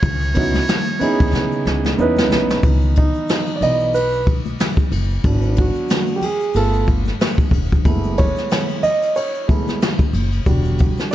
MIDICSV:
0, 0, Header, 1, 5, 480
1, 0, Start_track
1, 0, Key_signature, 4, "minor"
1, 0, Tempo, 652174
1, 21, Time_signature, 4, 2, 24, 8
1, 8206, End_track
2, 0, Start_track
2, 0, Title_t, "Muted trumpet"
2, 0, Program_c, 0, 59
2, 0, Note_on_c, 0, 73, 108
2, 1471, Note_off_c, 0, 73, 0
2, 8206, End_track
3, 0, Start_track
3, 0, Title_t, "Grand piano"
3, 0, Program_c, 1, 0
3, 250, Note_on_c, 1, 59, 66
3, 258, Note_on_c, 1, 61, 64
3, 265, Note_on_c, 1, 63, 63
3, 271, Note_on_c, 1, 64, 65
3, 280, Note_on_c, 1, 66, 74
3, 435, Note_off_c, 1, 59, 0
3, 439, Note_off_c, 1, 61, 0
3, 443, Note_off_c, 1, 63, 0
3, 446, Note_off_c, 1, 64, 0
3, 450, Note_off_c, 1, 66, 0
3, 730, Note_on_c, 1, 59, 76
3, 739, Note_on_c, 1, 61, 72
3, 745, Note_on_c, 1, 63, 76
3, 751, Note_on_c, 1, 64, 75
3, 759, Note_on_c, 1, 68, 88
3, 1415, Note_off_c, 1, 59, 0
3, 1420, Note_off_c, 1, 61, 0
3, 1423, Note_off_c, 1, 63, 0
3, 1426, Note_off_c, 1, 64, 0
3, 1430, Note_off_c, 1, 68, 0
3, 1456, Note_on_c, 1, 59, 79
3, 1462, Note_on_c, 1, 61, 66
3, 1467, Note_on_c, 1, 63, 75
3, 1475, Note_on_c, 1, 64, 67
3, 1483, Note_on_c, 1, 71, 89
3, 1935, Note_off_c, 1, 59, 0
3, 1938, Note_off_c, 1, 63, 0
3, 1941, Note_on_c, 1, 52, 44
3, 1942, Note_off_c, 1, 61, 0
3, 1946, Note_on_c, 1, 59, 42
3, 1948, Note_off_c, 1, 64, 0
3, 1949, Note_on_c, 1, 63, 52
3, 1952, Note_off_c, 1, 71, 0
3, 2180, Note_off_c, 1, 63, 0
3, 2191, Note_on_c, 1, 63, 93
3, 2594, Note_off_c, 1, 63, 0
3, 2618, Note_on_c, 1, 74, 69
3, 2632, Note_off_c, 1, 52, 0
3, 2635, Note_off_c, 1, 59, 0
3, 2662, Note_off_c, 1, 74, 0
3, 2663, Note_on_c, 1, 52, 45
3, 2665, Note_on_c, 1, 59, 42
3, 2667, Note_on_c, 1, 63, 52
3, 2670, Note_on_c, 1, 75, 96
3, 2878, Note_off_c, 1, 52, 0
3, 2880, Note_off_c, 1, 59, 0
3, 2881, Note_off_c, 1, 63, 0
3, 2902, Note_on_c, 1, 71, 88
3, 2913, Note_off_c, 1, 75, 0
3, 3125, Note_off_c, 1, 71, 0
3, 3862, Note_on_c, 1, 54, 48
3, 3868, Note_on_c, 1, 59, 44
3, 3871, Note_on_c, 1, 62, 55
3, 4108, Note_on_c, 1, 66, 91
3, 4535, Note_on_c, 1, 67, 66
3, 4552, Note_off_c, 1, 54, 0
3, 4554, Note_off_c, 1, 66, 0
3, 4555, Note_off_c, 1, 59, 0
3, 4557, Note_off_c, 1, 62, 0
3, 4580, Note_off_c, 1, 67, 0
3, 4592, Note_on_c, 1, 68, 89
3, 4823, Note_on_c, 1, 57, 57
3, 4827, Note_on_c, 1, 59, 48
3, 4831, Note_on_c, 1, 65, 56
3, 4834, Note_off_c, 1, 68, 0
3, 4836, Note_on_c, 1, 69, 96
3, 5052, Note_off_c, 1, 69, 0
3, 5156, Note_off_c, 1, 57, 0
3, 5158, Note_off_c, 1, 59, 0
3, 5160, Note_off_c, 1, 65, 0
3, 5779, Note_on_c, 1, 56, 51
3, 5782, Note_on_c, 1, 57, 46
3, 5786, Note_on_c, 1, 59, 45
3, 5787, Note_on_c, 1, 64, 55
3, 6022, Note_on_c, 1, 73, 91
3, 6471, Note_off_c, 1, 56, 0
3, 6472, Note_off_c, 1, 57, 0
3, 6474, Note_off_c, 1, 59, 0
3, 6475, Note_off_c, 1, 64, 0
3, 6499, Note_on_c, 1, 75, 99
3, 6516, Note_off_c, 1, 73, 0
3, 6742, Note_on_c, 1, 73, 83
3, 6748, Note_off_c, 1, 75, 0
3, 6965, Note_off_c, 1, 73, 0
3, 6976, Note_on_c, 1, 56, 53
3, 6979, Note_on_c, 1, 57, 45
3, 6980, Note_on_c, 1, 59, 42
3, 6982, Note_on_c, 1, 64, 53
3, 7195, Note_off_c, 1, 56, 0
3, 7196, Note_off_c, 1, 57, 0
3, 7197, Note_off_c, 1, 59, 0
3, 7198, Note_off_c, 1, 64, 0
3, 7702, Note_on_c, 1, 50, 41
3, 7702, Note_on_c, 1, 55, 52
3, 7707, Note_on_c, 1, 66, 55
3, 8177, Note_on_c, 1, 74, 90
3, 8206, Note_off_c, 1, 50, 0
3, 8206, Note_off_c, 1, 55, 0
3, 8206, Note_off_c, 1, 66, 0
3, 8206, Note_off_c, 1, 74, 0
3, 8206, End_track
4, 0, Start_track
4, 0, Title_t, "Upright bass"
4, 0, Program_c, 2, 32
4, 21, Note_on_c, 2, 37, 108
4, 421, Note_off_c, 2, 37, 0
4, 885, Note_on_c, 2, 39, 98
4, 967, Note_off_c, 2, 39, 0
4, 978, Note_on_c, 2, 49, 97
4, 1179, Note_off_c, 2, 49, 0
4, 1218, Note_on_c, 2, 37, 89
4, 1419, Note_off_c, 2, 37, 0
4, 1461, Note_on_c, 2, 40, 90
4, 1697, Note_off_c, 2, 40, 0
4, 1697, Note_on_c, 2, 35, 89
4, 1899, Note_off_c, 2, 35, 0
4, 1937, Note_on_c, 2, 37, 103
4, 2254, Note_off_c, 2, 37, 0
4, 2656, Note_on_c, 2, 35, 88
4, 3350, Note_off_c, 2, 35, 0
4, 3618, Note_on_c, 2, 30, 88
4, 3819, Note_off_c, 2, 30, 0
4, 3858, Note_on_c, 2, 32, 113
4, 4175, Note_off_c, 2, 32, 0
4, 4819, Note_on_c, 2, 31, 90
4, 5219, Note_off_c, 2, 31, 0
4, 5530, Note_on_c, 2, 28, 83
4, 5734, Note_off_c, 2, 28, 0
4, 5779, Note_on_c, 2, 30, 99
4, 6095, Note_off_c, 2, 30, 0
4, 7458, Note_on_c, 2, 30, 92
4, 7659, Note_off_c, 2, 30, 0
4, 7700, Note_on_c, 2, 28, 102
4, 8016, Note_off_c, 2, 28, 0
4, 8206, End_track
5, 0, Start_track
5, 0, Title_t, "Drums"
5, 20, Note_on_c, 9, 36, 105
5, 20, Note_on_c, 9, 51, 64
5, 20, Note_on_c, 9, 82, 61
5, 93, Note_off_c, 9, 51, 0
5, 94, Note_off_c, 9, 36, 0
5, 94, Note_off_c, 9, 82, 0
5, 159, Note_on_c, 9, 82, 56
5, 233, Note_off_c, 9, 82, 0
5, 255, Note_on_c, 9, 51, 60
5, 257, Note_on_c, 9, 82, 44
5, 272, Note_on_c, 9, 36, 85
5, 329, Note_off_c, 9, 51, 0
5, 330, Note_off_c, 9, 82, 0
5, 345, Note_off_c, 9, 36, 0
5, 397, Note_on_c, 9, 51, 42
5, 399, Note_on_c, 9, 63, 70
5, 399, Note_on_c, 9, 82, 51
5, 407, Note_on_c, 9, 38, 39
5, 471, Note_off_c, 9, 51, 0
5, 473, Note_off_c, 9, 63, 0
5, 473, Note_off_c, 9, 82, 0
5, 481, Note_off_c, 9, 38, 0
5, 497, Note_on_c, 9, 82, 64
5, 503, Note_on_c, 9, 44, 53
5, 503, Note_on_c, 9, 51, 74
5, 510, Note_on_c, 9, 38, 108
5, 571, Note_off_c, 9, 82, 0
5, 577, Note_off_c, 9, 44, 0
5, 577, Note_off_c, 9, 51, 0
5, 583, Note_off_c, 9, 38, 0
5, 635, Note_on_c, 9, 82, 48
5, 709, Note_off_c, 9, 82, 0
5, 742, Note_on_c, 9, 51, 61
5, 745, Note_on_c, 9, 63, 48
5, 745, Note_on_c, 9, 64, 61
5, 745, Note_on_c, 9, 82, 45
5, 815, Note_off_c, 9, 51, 0
5, 818, Note_off_c, 9, 63, 0
5, 818, Note_off_c, 9, 64, 0
5, 818, Note_off_c, 9, 82, 0
5, 880, Note_on_c, 9, 82, 47
5, 885, Note_on_c, 9, 51, 40
5, 886, Note_on_c, 9, 36, 106
5, 954, Note_off_c, 9, 82, 0
5, 959, Note_off_c, 9, 36, 0
5, 959, Note_off_c, 9, 51, 0
5, 977, Note_on_c, 9, 63, 50
5, 977, Note_on_c, 9, 82, 68
5, 990, Note_on_c, 9, 38, 57
5, 1051, Note_off_c, 9, 63, 0
5, 1051, Note_off_c, 9, 82, 0
5, 1063, Note_off_c, 9, 38, 0
5, 1119, Note_on_c, 9, 82, 50
5, 1193, Note_off_c, 9, 82, 0
5, 1220, Note_on_c, 9, 82, 37
5, 1228, Note_on_c, 9, 38, 69
5, 1293, Note_off_c, 9, 82, 0
5, 1302, Note_off_c, 9, 38, 0
5, 1360, Note_on_c, 9, 63, 63
5, 1360, Note_on_c, 9, 82, 43
5, 1366, Note_on_c, 9, 38, 70
5, 1433, Note_off_c, 9, 63, 0
5, 1433, Note_off_c, 9, 82, 0
5, 1440, Note_off_c, 9, 38, 0
5, 1460, Note_on_c, 9, 82, 63
5, 1534, Note_off_c, 9, 82, 0
5, 1594, Note_on_c, 9, 63, 61
5, 1594, Note_on_c, 9, 82, 45
5, 1608, Note_on_c, 9, 38, 86
5, 1667, Note_off_c, 9, 63, 0
5, 1667, Note_off_c, 9, 82, 0
5, 1681, Note_off_c, 9, 38, 0
5, 1697, Note_on_c, 9, 64, 61
5, 1697, Note_on_c, 9, 82, 42
5, 1707, Note_on_c, 9, 38, 97
5, 1771, Note_off_c, 9, 64, 0
5, 1771, Note_off_c, 9, 82, 0
5, 1780, Note_off_c, 9, 38, 0
5, 1834, Note_on_c, 9, 82, 43
5, 1844, Note_on_c, 9, 38, 87
5, 1907, Note_off_c, 9, 82, 0
5, 1918, Note_off_c, 9, 38, 0
5, 1935, Note_on_c, 9, 82, 57
5, 1936, Note_on_c, 9, 51, 63
5, 1938, Note_on_c, 9, 36, 107
5, 2009, Note_off_c, 9, 51, 0
5, 2009, Note_off_c, 9, 82, 0
5, 2012, Note_off_c, 9, 36, 0
5, 2073, Note_on_c, 9, 82, 49
5, 2146, Note_off_c, 9, 82, 0
5, 2175, Note_on_c, 9, 51, 61
5, 2176, Note_on_c, 9, 82, 42
5, 2191, Note_on_c, 9, 36, 81
5, 2248, Note_off_c, 9, 51, 0
5, 2250, Note_off_c, 9, 82, 0
5, 2264, Note_off_c, 9, 36, 0
5, 2315, Note_on_c, 9, 82, 46
5, 2388, Note_off_c, 9, 82, 0
5, 2413, Note_on_c, 9, 82, 57
5, 2423, Note_on_c, 9, 44, 48
5, 2423, Note_on_c, 9, 51, 74
5, 2429, Note_on_c, 9, 38, 103
5, 2487, Note_off_c, 9, 82, 0
5, 2496, Note_off_c, 9, 44, 0
5, 2496, Note_off_c, 9, 51, 0
5, 2502, Note_off_c, 9, 38, 0
5, 2552, Note_on_c, 9, 82, 47
5, 2625, Note_off_c, 9, 82, 0
5, 2659, Note_on_c, 9, 64, 62
5, 2659, Note_on_c, 9, 82, 42
5, 2662, Note_on_c, 9, 51, 52
5, 2733, Note_off_c, 9, 64, 0
5, 2733, Note_off_c, 9, 82, 0
5, 2736, Note_off_c, 9, 51, 0
5, 2798, Note_on_c, 9, 82, 44
5, 2871, Note_off_c, 9, 82, 0
5, 2896, Note_on_c, 9, 82, 66
5, 2907, Note_on_c, 9, 51, 68
5, 2970, Note_off_c, 9, 82, 0
5, 2980, Note_off_c, 9, 51, 0
5, 3043, Note_on_c, 9, 82, 50
5, 3117, Note_off_c, 9, 82, 0
5, 3139, Note_on_c, 9, 51, 49
5, 3141, Note_on_c, 9, 82, 36
5, 3142, Note_on_c, 9, 36, 83
5, 3213, Note_off_c, 9, 51, 0
5, 3214, Note_off_c, 9, 82, 0
5, 3216, Note_off_c, 9, 36, 0
5, 3279, Note_on_c, 9, 51, 34
5, 3279, Note_on_c, 9, 63, 55
5, 3279, Note_on_c, 9, 82, 43
5, 3352, Note_off_c, 9, 63, 0
5, 3352, Note_off_c, 9, 82, 0
5, 3353, Note_off_c, 9, 51, 0
5, 3378, Note_on_c, 9, 82, 65
5, 3384, Note_on_c, 9, 44, 57
5, 3384, Note_on_c, 9, 51, 75
5, 3390, Note_on_c, 9, 38, 107
5, 3452, Note_off_c, 9, 82, 0
5, 3458, Note_off_c, 9, 44, 0
5, 3458, Note_off_c, 9, 51, 0
5, 3463, Note_off_c, 9, 38, 0
5, 3512, Note_on_c, 9, 36, 98
5, 3513, Note_on_c, 9, 82, 43
5, 3585, Note_off_c, 9, 36, 0
5, 3587, Note_off_c, 9, 82, 0
5, 3619, Note_on_c, 9, 64, 58
5, 3619, Note_on_c, 9, 82, 42
5, 3621, Note_on_c, 9, 51, 56
5, 3693, Note_off_c, 9, 64, 0
5, 3693, Note_off_c, 9, 82, 0
5, 3695, Note_off_c, 9, 51, 0
5, 3757, Note_on_c, 9, 82, 44
5, 3831, Note_off_c, 9, 82, 0
5, 3855, Note_on_c, 9, 82, 59
5, 3858, Note_on_c, 9, 36, 106
5, 3858, Note_on_c, 9, 51, 64
5, 3929, Note_off_c, 9, 82, 0
5, 3932, Note_off_c, 9, 36, 0
5, 3932, Note_off_c, 9, 51, 0
5, 3990, Note_on_c, 9, 82, 51
5, 4063, Note_off_c, 9, 82, 0
5, 4093, Note_on_c, 9, 82, 42
5, 4094, Note_on_c, 9, 51, 57
5, 4110, Note_on_c, 9, 36, 83
5, 4166, Note_off_c, 9, 82, 0
5, 4168, Note_off_c, 9, 51, 0
5, 4184, Note_off_c, 9, 36, 0
5, 4230, Note_on_c, 9, 82, 45
5, 4304, Note_off_c, 9, 82, 0
5, 4329, Note_on_c, 9, 82, 57
5, 4342, Note_on_c, 9, 44, 56
5, 4342, Note_on_c, 9, 51, 73
5, 4348, Note_on_c, 9, 38, 105
5, 4403, Note_off_c, 9, 82, 0
5, 4415, Note_off_c, 9, 44, 0
5, 4415, Note_off_c, 9, 51, 0
5, 4421, Note_off_c, 9, 38, 0
5, 4469, Note_on_c, 9, 82, 47
5, 4542, Note_off_c, 9, 82, 0
5, 4575, Note_on_c, 9, 64, 62
5, 4575, Note_on_c, 9, 82, 43
5, 4579, Note_on_c, 9, 51, 53
5, 4648, Note_off_c, 9, 64, 0
5, 4648, Note_off_c, 9, 82, 0
5, 4652, Note_off_c, 9, 51, 0
5, 4713, Note_on_c, 9, 82, 47
5, 4787, Note_off_c, 9, 82, 0
5, 4811, Note_on_c, 9, 82, 71
5, 4824, Note_on_c, 9, 51, 68
5, 4885, Note_off_c, 9, 82, 0
5, 4898, Note_off_c, 9, 51, 0
5, 4956, Note_on_c, 9, 82, 51
5, 5029, Note_off_c, 9, 82, 0
5, 5053, Note_on_c, 9, 82, 40
5, 5059, Note_on_c, 9, 51, 51
5, 5063, Note_on_c, 9, 36, 80
5, 5127, Note_off_c, 9, 82, 0
5, 5133, Note_off_c, 9, 51, 0
5, 5136, Note_off_c, 9, 36, 0
5, 5191, Note_on_c, 9, 63, 58
5, 5191, Note_on_c, 9, 82, 42
5, 5208, Note_on_c, 9, 38, 31
5, 5265, Note_off_c, 9, 63, 0
5, 5265, Note_off_c, 9, 82, 0
5, 5281, Note_off_c, 9, 38, 0
5, 5296, Note_on_c, 9, 82, 60
5, 5305, Note_on_c, 9, 44, 59
5, 5305, Note_on_c, 9, 51, 75
5, 5310, Note_on_c, 9, 38, 117
5, 5370, Note_off_c, 9, 82, 0
5, 5378, Note_off_c, 9, 44, 0
5, 5378, Note_off_c, 9, 51, 0
5, 5384, Note_off_c, 9, 38, 0
5, 5432, Note_on_c, 9, 36, 102
5, 5434, Note_on_c, 9, 82, 43
5, 5506, Note_off_c, 9, 36, 0
5, 5507, Note_off_c, 9, 82, 0
5, 5529, Note_on_c, 9, 36, 87
5, 5539, Note_on_c, 9, 64, 59
5, 5539, Note_on_c, 9, 82, 39
5, 5543, Note_on_c, 9, 51, 58
5, 5603, Note_off_c, 9, 36, 0
5, 5612, Note_off_c, 9, 64, 0
5, 5612, Note_off_c, 9, 82, 0
5, 5617, Note_off_c, 9, 51, 0
5, 5678, Note_on_c, 9, 82, 44
5, 5685, Note_on_c, 9, 36, 92
5, 5752, Note_off_c, 9, 82, 0
5, 5759, Note_off_c, 9, 36, 0
5, 5776, Note_on_c, 9, 82, 58
5, 5779, Note_on_c, 9, 36, 106
5, 5780, Note_on_c, 9, 51, 62
5, 5849, Note_off_c, 9, 82, 0
5, 5853, Note_off_c, 9, 36, 0
5, 5853, Note_off_c, 9, 51, 0
5, 5915, Note_on_c, 9, 82, 51
5, 5989, Note_off_c, 9, 82, 0
5, 6017, Note_on_c, 9, 51, 58
5, 6017, Note_on_c, 9, 82, 41
5, 6031, Note_on_c, 9, 36, 86
5, 6090, Note_off_c, 9, 51, 0
5, 6090, Note_off_c, 9, 82, 0
5, 6105, Note_off_c, 9, 36, 0
5, 6154, Note_on_c, 9, 82, 53
5, 6168, Note_on_c, 9, 38, 37
5, 6227, Note_off_c, 9, 82, 0
5, 6242, Note_off_c, 9, 38, 0
5, 6256, Note_on_c, 9, 82, 60
5, 6265, Note_on_c, 9, 44, 57
5, 6265, Note_on_c, 9, 51, 75
5, 6271, Note_on_c, 9, 38, 100
5, 6329, Note_off_c, 9, 82, 0
5, 6339, Note_off_c, 9, 44, 0
5, 6339, Note_off_c, 9, 51, 0
5, 6345, Note_off_c, 9, 38, 0
5, 6398, Note_on_c, 9, 82, 44
5, 6472, Note_off_c, 9, 82, 0
5, 6501, Note_on_c, 9, 64, 63
5, 6501, Note_on_c, 9, 82, 45
5, 6502, Note_on_c, 9, 51, 60
5, 6575, Note_off_c, 9, 51, 0
5, 6575, Note_off_c, 9, 64, 0
5, 6575, Note_off_c, 9, 82, 0
5, 6637, Note_on_c, 9, 82, 47
5, 6645, Note_on_c, 9, 51, 39
5, 6710, Note_off_c, 9, 82, 0
5, 6719, Note_off_c, 9, 51, 0
5, 6738, Note_on_c, 9, 82, 69
5, 6746, Note_on_c, 9, 51, 64
5, 6811, Note_off_c, 9, 82, 0
5, 6820, Note_off_c, 9, 51, 0
5, 6881, Note_on_c, 9, 82, 50
5, 6955, Note_off_c, 9, 82, 0
5, 6980, Note_on_c, 9, 82, 37
5, 6983, Note_on_c, 9, 51, 48
5, 6985, Note_on_c, 9, 36, 87
5, 7054, Note_off_c, 9, 82, 0
5, 7057, Note_off_c, 9, 51, 0
5, 7059, Note_off_c, 9, 36, 0
5, 7121, Note_on_c, 9, 63, 59
5, 7121, Note_on_c, 9, 82, 42
5, 7129, Note_on_c, 9, 38, 33
5, 7195, Note_off_c, 9, 63, 0
5, 7195, Note_off_c, 9, 82, 0
5, 7203, Note_off_c, 9, 38, 0
5, 7220, Note_on_c, 9, 82, 65
5, 7227, Note_on_c, 9, 44, 56
5, 7227, Note_on_c, 9, 51, 77
5, 7233, Note_on_c, 9, 38, 116
5, 7293, Note_off_c, 9, 82, 0
5, 7301, Note_off_c, 9, 44, 0
5, 7301, Note_off_c, 9, 51, 0
5, 7306, Note_off_c, 9, 38, 0
5, 7353, Note_on_c, 9, 36, 102
5, 7354, Note_on_c, 9, 82, 43
5, 7427, Note_off_c, 9, 36, 0
5, 7428, Note_off_c, 9, 82, 0
5, 7458, Note_on_c, 9, 64, 58
5, 7458, Note_on_c, 9, 82, 40
5, 7464, Note_on_c, 9, 51, 54
5, 7532, Note_off_c, 9, 64, 0
5, 7532, Note_off_c, 9, 82, 0
5, 7538, Note_off_c, 9, 51, 0
5, 7595, Note_on_c, 9, 82, 42
5, 7600, Note_on_c, 9, 51, 38
5, 7669, Note_off_c, 9, 82, 0
5, 7674, Note_off_c, 9, 51, 0
5, 7697, Note_on_c, 9, 82, 57
5, 7700, Note_on_c, 9, 51, 61
5, 7701, Note_on_c, 9, 36, 105
5, 7770, Note_off_c, 9, 82, 0
5, 7774, Note_off_c, 9, 51, 0
5, 7775, Note_off_c, 9, 36, 0
5, 7835, Note_on_c, 9, 82, 52
5, 7909, Note_off_c, 9, 82, 0
5, 7937, Note_on_c, 9, 82, 41
5, 7938, Note_on_c, 9, 51, 61
5, 7953, Note_on_c, 9, 36, 95
5, 8010, Note_off_c, 9, 82, 0
5, 8012, Note_off_c, 9, 51, 0
5, 8026, Note_off_c, 9, 36, 0
5, 8077, Note_on_c, 9, 82, 51
5, 8091, Note_on_c, 9, 38, 39
5, 8151, Note_off_c, 9, 82, 0
5, 8164, Note_off_c, 9, 38, 0
5, 8175, Note_on_c, 9, 82, 58
5, 8206, Note_off_c, 9, 82, 0
5, 8206, End_track
0, 0, End_of_file